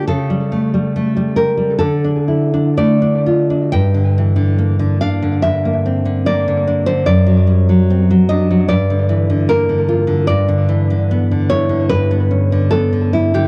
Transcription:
\new Staff \with { instrumentName = "Nylon-string guitar" } { \time 4/4 \key g \dorian \tempo 4 = 73 << { a'4. bes'8 a'4 d''4 | g''4. f''8 e''4 d''8. c''16 | d''4. ees''8 d''4 bes'4 | \key e \dorian d''4. cis''8 b'4 a'8. g'16 | } \\ { cis16 g16 a16 g16 a16 g16 g'16 g16 d16 d'16 e'16 d'16 a16 d'16 f'16 d'16 | g,16 d16 e16 d16 bes16 d16 d'16 d16 g,16 bes16 c'16 d16 bes16 d16 d'16 d16 | fis,16 fis16 g16 fis16 c'16 fis16 d'16 fis16 g,16 d16 e16 d16 bes16 d16 f'16 d16 | g,16 d16 e16 d16 b16 d16 e'16 d16 g,16 b16 cis'16 d16 b16 d16 e'16 d16 | } >> }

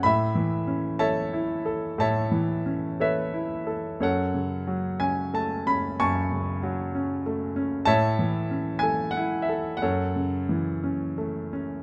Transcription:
<<
  \new Staff \with { instrumentName = "Grand piano" } { \time 6/8 \key fis \minor \tempo 4. = 60 << { b''4 r8 a''4. | a''4. e''4 r8 | fis''4. gis''8 a''8 b''8 | cis'''2 r4 |
a''4. gis''8 fis''8 e''8 | fis''2 r4 | } \\ { e''4. <cis'' e''>4. | <cis'' e''>4. <b' cis''>4. | <a' cis''>4. r4. | <gis'' a''>2 r4 |
<cis'' e''>4. r4. | <a' cis''>2 r4 | } >> }
  \new Staff \with { instrumentName = "Grand piano" } { \time 6/8 \key fis \minor a,8 e8 cis'8 a'8 e'8 a'8 | a,8 e8 cis'8 a'8 e'8 a'8 | fis,8 cis8 fis8 cis'8 a8 cis'8 | fis,8 cis8 fis8 cis'8 a8 cis'8 |
a,8 e8 cis'8 a'8 e'8 a'8 | fis,8 cis8 e8 cis'8 a8 cis'8 | }
>>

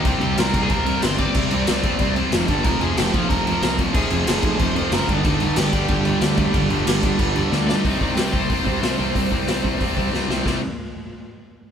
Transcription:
<<
  \new Staff \with { instrumentName = "Lead electric guitar" } { \time 4/4 \key c \minor \tempo 4 = 185 <g' g''>4 <bes' bes''>8. <aes' aes''>16 <bes' bes''>4 <c'' c'''>8 <d'' d'''>8~ | <d'' d'''>2~ <d'' d'''>8 r4. | <bes' bes''>8 <aes' aes''>8 <g' g''>8 <f' f''>8 <bes' bes''>4. r8 | <aes' aes''>2 <c'' c'''>8 <c'' c'''>8 <bes' bes''>8 <d' d''>16 <ees' ees''>16~ |
<ees' ees''>4 <g' g''>8 <g' g''>2~ <g' g''>8~ | <g' g''>2. r8 <d' d''>16 <ees' ees''>16~ | <ees' ees''>4 <g' g''>8 <c'' c'''>2~ <c'' c'''>8~ | <c'' c'''>2. r4 |
r1 | }
  \new Staff \with { instrumentName = "Distorted electric guitar" } { \clef bass \time 4/4 \key c \minor <c g c'>8 <c g c'>8 <c g c'>8 <c g c'>8 <c g c'>8 <c g c'>8 <c g c'>8 <c g c'>8 | <c g c'>8 <c g c'>8 <c g c'>8 <c g c'>8 <c g c'>8 <c g c'>8 <f, c f>8 <g, d g>8 | <f, c f>8 <f, c f>8 <f, c f>8 <f, c f>8 <f, c f>8 <f, c f>8 <f, c f>8 <f, c f>8 | <f, c f>8 <f, c f>8 <f, c f>8 <f, c f>8 <f, c f>8 <f, c f>8 <f, c f>8 <g, d g>8 |
<g, d g>8 <g, d g>8 <g, d g>8 <g, d g>8 <g, d g>8 <g, d g>8 <g, d g>8 <g, d g>8 | <g, d g>8 <g, d g>8 <g, d g>8 <g, d g>8 <g, d g>8 <g, d g>8 <g, d g>8 <g, d g>8 | <c g c'>8 <c g c'>8 <c g c'>8 <c g c'>8 <c g c'>8 <c g c'>8 <c g c'>8 <c g c'>8 | <c g c'>8 <c g c'>8 <c g c'>8 <c g c'>8 <c g c'>8 <c g c'>8 <c g c'>8 <c g c'>8 |
<c g c'>8 r2. r8 | }
  \new Staff \with { instrumentName = "Distorted electric guitar" } { \clef bass \time 4/4 \key c \minor <c g c'>8 <c g c'>8 <c g c'>8 <c g c'>8 <c g c'>8 <c g c'>8 <c g c'>8 <c g c'>8 | <c g c'>8 <c g c'>8 <c g c'>8 <c g c'>8 <c g c'>8 <c g c'>8 <f, c f>8 <g, d g>8 | <f, c f>8 <f, c f>8 <f, c f>8 <f, c f>8 <f, c f>8 <f, c f>8 <f, c f>8 <f, c f>8 | <f, c f>8 <f, c f>8 <f, c f>8 <f, c f>8 <f, c f>8 <f, c f>8 <f, c f>8 <g, d g>8 |
<g, d g>8 <g, d g>8 <g, d g>8 <g, d g>8 <g, d g>8 <g, d g>8 <g, d g>8 <g, d g>8 | <g, d g>8 <g, d g>8 <g, d g>8 <g, d g>8 <g, d g>8 <g, d g>8 <g, d g>8 <g, d g>8 | <c g c'>8 <c g c'>8 <c g c'>8 <c g c'>8 <c g c'>8 <c g c'>8 <c g c'>8 <c g c'>8 | <c g c'>8 <c g c'>8 <c g c'>8 <c g c'>8 <c g c'>8 <c g c'>8 <c g c'>8 <c g c'>8 |
<c g c'>8 r2. r8 | }
  \new Staff \with { instrumentName = "Picked electric bass" } { \clef bass \time 4/4 \key c \minor c,8 c,8 c,8 c,8 c,4 g,,4 | c,8 c,8 c,8 c,8 c,4 f,,8 g,,8 | f,,8 f,,8 f,,8 f,,8 f,,4 c,4 | f,,8 f,,8 f,,8 f,,8 f,,4 fis,,8 g,,8 |
g,,8 g,,8 g,,8 g,,8 g,,4 d,4 | g,,8 g,,8 g,,8 g,,8 g,,4 d,4 | c,8 c,8 c,8 c,8 c,8 c,8 c,8 c,8 | c,8 c,8 c,8 c,8 c,8 c,8 c,8 c,8 |
c,8 r2. r8 | }
  \new DrumStaff \with { instrumentName = "Drums" } \drummode { \time 4/4 <cymc bd>8 cymc8 <cymc sn>8 <cymc bd>8 <cymc bd>8 cymc8 <cymc sn>8 <cymc bd>8 | <cymc bd>8 cymc8 <cymc sn>8 <cymc bd>8 <cymc bd>8 cymc8 <cymc sn>8 <cymc bd>8 | <cymc bd>8 cymc8 <cymc sn>8 <cymc bd>8 <cymc bd>8 cymc8 <cymc sn>8 <cymc bd>8 | <cymc bd>8 cymc8 <cymc sn>8 <cymc bd>8 <cymc bd>8 cymc8 <cymc sn>8 <cymc bd>8 |
<cymc bd>8 cymc8 <cymc sn>8 <cymc bd>8 <cymc bd>8 cymc8 <cymc sn>8 <cymc bd>8 | <cymc bd>8 cymc8 <cymc sn>8 <cymc bd>8 <cymc bd>8 cymc8 sn8 sn8 | <hho bd>8 bd8 <hho sn>8 bd8 <hho bd>8 bd8 <hho sn>4 | <hho bd>8 bd8 <hho sn>8 bd8 <hho bd>8 bd8 sn8 sn8 |
<bd sn>4 r4 r4 r4 | }
>>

